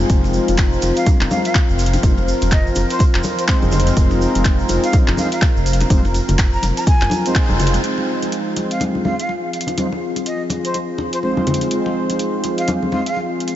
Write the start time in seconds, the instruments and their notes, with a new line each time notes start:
Already playing: analog synth pad F3 C4 F4
0.00 muted conga
0.09 detuned saw bass F1, analog polysynth G#3 C4 D#4 F4 C5, analog synth pad A#4, kick, closed hi-hat, shaker
0.24 muted conga, shaker
0.33 shaker
0.48 detuned saw bass F1, closed hi-hat, muted conga, shaker
0.58 kick, clap, closed hi-hat, shaker
0.73 shaker
0.82 detuned saw bass F1, closed hi-hat, muted conga, shaker
0.96 flute F5, closed hi-hat, shaker
1.06 kick, closed hi-hat, muted conga, high conga, shaker
1.21 detuned saw bass F1, clap, high conga, shaker
1.31 analog polysynth G#3 C4 D#4 F4 C5, flute F5, muted conga, high conga, shaker
1.45 flute F5, closed hi-hat, shaker
1.55 kick, clap, muted conga, shaker
1.70 detuned saw bass F1, shaker
1.79 closed hi-hat, shaker
1.86 closed hi-hat
1.93 closed hi-hat, muted conga, high conga, shaker
2.03 detuned saw bass F1, analog polysynth G#3 C4 D#4 F4 C5, kick, closed hi-hat, high conga, shaker
2.18 muted conga, shaker
2.28 shaker
2.42 detuned saw bass F1, closed hi-hat, muted conga, shaker
2.52 flute D#5, kick, clap, closed hi-hat, shaker
2.67 shaker
2.75 detuned saw bass F1, closed hi-hat, muted conga, high conga, shaker
2.90 flute C5, closed hi-hat, shaker
2.99 kick, closed hi-hat, muted conga, shaker
3.15 detuned saw bass F1, clap, shaker
3.23 muted conga, high conga, shaker
3.39 flute C5, closed hi-hat, shaker
3.48 analog polysynth G#3 C4 D#4 F4 C5, flute C5, kick, clap, muted conga, shaker
3.62 detuned saw bass F1, high conga, shaker
3.72 closed hi-hat, high conga, low conga, shaker
3.80 closed hi-hat
3.87 closed hi-hat, muted conga, shaker
3.97 detuned saw bass F1, analog polysynth G#3 C4 D#4 F4 C5, kick, closed hi-hat, shaker
4.11 muted conga, shaker
4.22 shaker
4.35 detuned saw bass F1, closed hi-hat, muted conga, shaker
4.45 kick, clap, closed hi-hat, shaker
4.59 shaker
4.69 detuned saw bass F1, closed hi-hat, muted conga, shaker
4.84 flute F5, closed hi-hat, shaker
4.92 kick, closed hi-hat, muted conga, high conga, shaker
5.08 detuned saw bass F1, clap, high conga, shaker
5.17 analog polysynth G#3 C4 D#4 F4 C5, flute F5, muted conga, high conga, shaker
5.32 flute F5, closed hi-hat, shaker
5.42 kick, clap, muted conga, shaker
5.56 detuned saw bass F1, shaker
5.66 closed hi-hat, shaker
5.73 closed hi-hat
5.81 closed hi-hat, muted conga, high conga, shaker
5.90 detuned saw bass F1, analog polysynth G#3 C4 D#4 F4 C5, kick, closed hi-hat, high conga, shaker
6.05 muted conga, shaker
6.14 closed hi-hat, shaker
6.28 detuned saw bass F1, closed hi-hat, muted conga, low conga, shaker
6.38 kick, clap, closed hi-hat, shaker
6.53 flute A#5, shaker
6.62 detuned saw bass F1, closed hi-hat, muted conga, high conga, shaker
6.77 flute A#5, closed hi-hat, shaker
6.87 flute G#5, kick, closed hi-hat, muted conga, shaker
7.01 detuned saw bass F1, clap, shaker
7.10 closed hi-hat, muted conga, high conga, shaker
7.26 analog polysynth G#3 C4 D#4 F4 C5, closed hi-hat, shaker
7.35 kick, clap, muted conga, shaker
7.49 detuned saw bass F1, high conga, shaker
7.59 closed hi-hat, high conga, low conga, shaker
7.67 closed hi-hat
7.74 closed hi-hat, muted conga, shaker
7.84 analog synth pad F3 C4 F4 G#4, analog polysynth G#3 C4 D#4 F4 C5, closed hi-hat
7.98 muted conga
8.22 closed hi-hat, muted conga
8.32 closed hi-hat
8.56 closed hi-hat, muted conga
8.71 flute F5, closed hi-hat
8.80 closed hi-hat, muted conga, high conga
8.95 high conga
9.05 analog polysynth G#3 C4 D#4 F4 C5, flute F5, muted conga, high conga
9.19 flute F5, closed hi-hat
9.29 muted conga
9.53 closed hi-hat
9.61 closed hi-hat
9.67 closed hi-hat, muted conga, high conga
9.77 analog polysynth G#3 C4 D#4 F4 C5, closed hi-hat, high conga
9.92 muted conga
10.16 closed hi-hat, muted conga
10.26 flute D#5, closed hi-hat
10.50 closed hi-hat, muted conga, high conga
10.65 flute C5, closed hi-hat
10.74 closed hi-hat, muted conga
10.98 muted conga, high conga
11.13 flute C5, closed hi-hat
11.22 analog polysynth G#3 C4 D#4 F4 C5, flute C5, muted conga
11.37 high conga
11.47 closed hi-hat, high conga, low conga
11.54 closed hi-hat
11.61 closed hi-hat, muted conga
11.71 analog polysynth G#3 C4 D#4 F4 C5, closed hi-hat
11.86 muted conga
12.10 closed hi-hat, muted conga
12.19 closed hi-hat
12.44 closed hi-hat, muted conga
12.58 flute F5, closed hi-hat
12.68 closed hi-hat, muted conga, high conga
12.82 high conga
12.92 analog polysynth G#3 C4 D#4 F4 C5, flute F5, muted conga, high conga
13.06 flute F5, closed hi-hat
13.16 muted conga
13.40 closed hi-hat
13.48 closed hi-hat